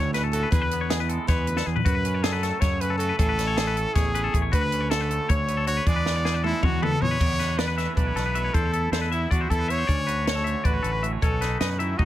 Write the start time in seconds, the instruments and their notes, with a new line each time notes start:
Already playing: fingered electric bass D2, clean electric guitar D2 A2 D3 A3 C#4 C#5, trumpet C#5
0.14 clean electric guitar C#4 B4, trumpet B4, snare, closed hi-hat
0.24 clean electric guitar A4
0.32 clean electric guitar A3 F#4, trumpet A4, closed hi-hat
0.43 clean electric guitar B4
0.51 fingered electric bass E2, clean electric guitar E2 G#4, trumpet B4, kick, closed hi-hat
0.62 clean electric guitar B4
0.71 clean electric guitar B3, closed hi-hat
0.81 clean electric guitar C#5
0.90 clean electric guitar E3 G#4, snare, closed hi-hat
1.00 clean electric guitar B4
1.09 clean electric guitar G#3 A4, closed hi-hat
1.28 fingered electric bass E2, trumpet B4, clean electric guitar C#5, kick, snare, closed hi-hat
1.47 clean electric guitar D2 B4, closed hi-hat
1.57 clean electric guitar A4, snare
1.66 clean electric guitar E2 G#4, fingered electric bass E2
1.76 clean electric guitar B4, floor tom
1.85 clean electric guitar F#2 F#4, fingered electric bass F#2, trumpet B4, kick, closed hi-hat
1.95 clean electric guitar B4
2.05 clean electric guitar C#4, closed hi-hat
2.14 clean electric guitar C#5
2.23 clean electric guitar F#3 G#4, trumpet A4, snare, closed hi-hat
2.32 clean electric guitar B4
2.43 clean electric guitar A3 A4, snare, closed hi-hat
2.61 fingered electric bass F#2, clean electric guitar C#3 C#5, trumpet C#5, kick, snare, closed hi-hat
2.80 clean electric guitar C#4 B4, trumpet B4, closed hi-hat
2.90 clean electric guitar A4
2.98 clean electric guitar A3 F#4, trumpet A4, closed hi-hat
3.09 clean electric guitar B4
3.18 fingered electric bass A1, clean electric guitar A2 G#4, trumpet A4, kick, closed hi-hat
3.29 clean electric guitar B4
3.38 clean electric guitar C#4, snare, closed hi-hat
3.47 clean electric guitar C#5
3.57 clean electric guitar E3 G#4, snare, closed hi-hat
3.67 clean electric guitar B4
3.77 clean electric guitar A3 A4, closed hi-hat
3.94 fingered electric bass A1, clean electric guitar E2 C#5, trumpet G#4, kick, snare, closed hi-hat
4.15 clean electric guitar C#4 B4, closed hi-hat
4.24 clean electric guitar A4
4.33 fingered electric bass A1, clean electric guitar A3 G#4, kick, closed hi-hat
4.42 clean electric guitar C#5
4.52 fingered electric bass D2, clean electric guitar D2 F#4, trumpet B4, kick, closed hi-hat
4.61 clean electric guitar B4
4.72 clean electric guitar C#4, closed hi-hat
4.81 clean electric guitar C#5
4.90 clean electric guitar D3 A4, trumpet A4, snare, closed hi-hat
5.01 clean electric guitar B4
5.10 clean electric guitar A3 A4, closed hi-hat
5.29 fingered electric bass D2, clean electric guitar C#5, trumpet C#5, kick, closed hi-hat
5.48 clean electric guitar B4, closed hi-hat
5.57 clean electric guitar A4
5.67 clean electric guitar D2 F#4, trumpet C#5, closed hi-hat
5.77 clean electric guitar B4
5.86 fingered electric bass E2, clean electric guitar E2 E3 G#3 B3 D4 G#4, trumpet D5, kick, closed hi-hat
5.96 clean electric guitar B4
6.06 clean electric guitar B3, snare
6.16 clean electric guitar C#5
6.24 clean electric guitar E3 G#4, snare
6.34 clean electric guitar B4
6.43 clean electric guitar G#3 A4, trumpet E4, high tom
6.63 fingered electric bass E2, clean electric guitar B2 C#5, trumpet F#4, kick, mid tom
6.82 clean electric guitar B3 B4, trumpet A4, mid tom
6.92 clean electric guitar A4
7.01 fingered electric bass E2, clean electric guitar G#3 G#4, trumpet C#5, floor tom
7.11 clean electric guitar B4
7.21 clean electric guitar E2 B3 D5, fingered electric bass E2, kick, crash
7.39 clean electric guitar D4 B4, snare, closed hi-hat
7.58 clean electric guitar B3 D5, trumpet B4, snare, closed hi-hat
7.68 clean electric guitar B4
7.77 clean electric guitar E3 A3 E5, snare, closed hi-hat
7.96 fingered electric bass B1, clean electric guitar D4 D5, trumpet B4, kick, closed hi-hat
8.07 clean electric guitar C#5
8.16 fingered electric bass B1, clean electric guitar A3 A4, snare, closed hi-hat
8.26 clean electric guitar B3 B4
8.35 clean electric guitar B2 A3 E5, closed hi-hat
8.44 clean electric guitar C#5
8.54 fingered electric bass E2, clean electric guitar E2 D4 C5, trumpet A4, kick, closed hi-hat
8.65 clean electric guitar E4
8.73 clean electric guitar E4 A4, closed hi-hat
8.92 fingered electric bass E2, clean electric guitar E4 C5, trumpet A4, snare, closed hi-hat
9.02 clean electric guitar B4
9.12 clean electric guitar E3 B3 E5, trumpet E4, closed hi-hat
9.31 fingered electric bass E2, clean electric guitar D4 D5, trumpet F#4, kick, closed hi-hat
9.41 clean electric guitar E4 C5
9.50 fingered electric bass E2, clean electric guitar E4 A4, trumpet A4, kick, closed hi-hat
9.59 clean electric guitar B4
9.68 clean electric guitar E2 B3 E5, trumpet C#5, closed hi-hat
9.78 clean electric guitar C5
9.87 clean electric guitar D2 C#4 D5, fingered electric bass D2, kick, closed hi-hat
10.07 clean electric guitar F#4 B4, closed hi-hat
10.26 clean electric guitar C#4 C#5, trumpet C#5, snare, closed hi-hat
10.35 clean electric guitar A4
10.44 clean electric guitar D3 A3 E5, closed hi-hat
10.64 fingered electric bass A1, clean electric guitar F#4 D5, trumpet B4, kick, closed hi-hat
10.73 clean electric guitar C#5
10.83 fingered electric bass A1, clean electric guitar C#4 A4, closed hi-hat
10.93 clean electric guitar B4
11.03 clean electric guitar A2 A3 E5, closed hi-hat
11.13 clean electric guitar C#5
11.22 fingered electric bass B1, clean electric guitar B2 C#4 C#5, trumpet A4, kick, closed hi-hat
11.41 clean electric guitar D#4 B4, snare, closed hi-hat
11.61 fingered electric bass F#2, clean electric guitar C#4 D#5, trumpet B4, snare, closed hi-hat
11.70 clean electric guitar B4
11.79 clean electric guitar D#3 A3 E5, trumpet E4, closed hi-hat
11.97 fingered electric bass B1, clean electric guitar D#4 D#5, trumpet F#4, kick, high tom